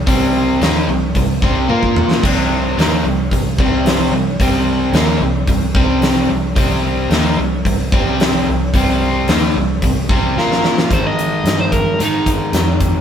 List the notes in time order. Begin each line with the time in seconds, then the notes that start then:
0.07 C2 C3 G3 C4, kick, open hi-hat
0.61 D#2 D#3 A#3 D#4, snare, open hi-hat
0.88 C2 C3 G3
1.15 C2 C3 G3, kick, open hi-hat
1.42 C2 C3 G3 C4, kick
1.69 A#2 A#3 F4 A#4, high tom
1.83 kick
1.96 mid tom
2.11 snare
2.23 C2 C3 G3 C4, kick, open hi-hat, crash
2.77 D#2 D#3 A#3 D#4, snare, open hi-hat
3.04 C2 C3 G3
3.31 C2 C3 G3, kick, open hi-hat
3.58 C2 C3 G3 C4, kick
3.86 snare, open hi-hat
4.12 C2 C3 G3
4.40 C2 C3 G3 C4, kick, open hi-hat
4.93 D#2 D#3 A#3 D#4, snare, open hi-hat
5.21 C2 C3 G3
5.47 C2 C3 G3, kick, open hi-hat
5.74 C2 C3 G3 C4, kick
6.02 snare, open hi-hat
6.29 C2 C3 G3
6.56 C2 C3 G3 C4, kick, open hi-hat
7.10 D#2 D#3 A#3 D#4, snare, open hi-hat
7.37 C2 C3 G3
7.65 C2 C3 G3, kick, open hi-hat
7.92 C2 C3 G3 C4, kick
8.20 snare, open hi-hat
8.48 C2 C3 G3
8.74 C2 C3 G3 C4, kick, open hi-hat
9.28 D#2 D#3 A#3 D#4, snare, open hi-hat
9.55 C2 C3 G3
9.82 C2 C3 G3, kick, open hi-hat
10.09 C2 C3 G3 C4, kick
10.36 A#2 A#3 F4 A#4, snare
10.52 snare
10.64 snare
10.78 snare
10.91 G#2 D#3 G#3 C5, kick, closed hi-hat
11.06 D#5
11.19 closed hi-hat
11.44 G2, snare, closed hi-hat
11.60 C5
11.72 A#4, kick, closed hi-hat
11.99 G#2 D#3 G#3 D#4, closed hi-hat
12.26 muted picked electric bass stroke, kick, closed hi-hat
12.53 F2, snare, closed hi-hat
12.80 kick, closed hi-hat